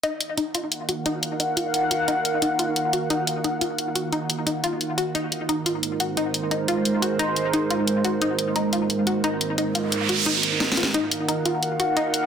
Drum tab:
HH |x--x--x--x--x--x--x--x--|x--x--x--x--x--x--x--x--|x--x--x--x--x--x--x--x--|x--x--x--x--x--x--x--x--|
SD |------------------------|------------------------|------------------------|------------------------|

HH |x--x--x--x--x--x--x--x--|x--x--x--x--x--x--x--x--|x--x--x--x--x--x--x--x--|x--x--x--x--x--x--x--x--|
SD |------------------------|------------------------|------------------------|------------------o-o-o-|

HH |x--x--x--x--x--x--x--x--|
SD |------------------------|